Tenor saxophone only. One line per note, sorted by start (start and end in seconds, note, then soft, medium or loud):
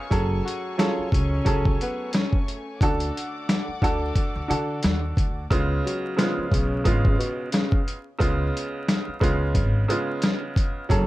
0.45 0.75 F#4 medium
0.78 1.09 F4 medium
1.12 1.75 C#4 medium
1.82 2.11 B3 medium
2.14 2.44 C#4 medium
5.85 6.15 F#3 medium
6.19 6.49 F3 medium
6.50 7.14 C#3 medium
7.18 7.49 B2 medium
7.52 7.83 C#3 medium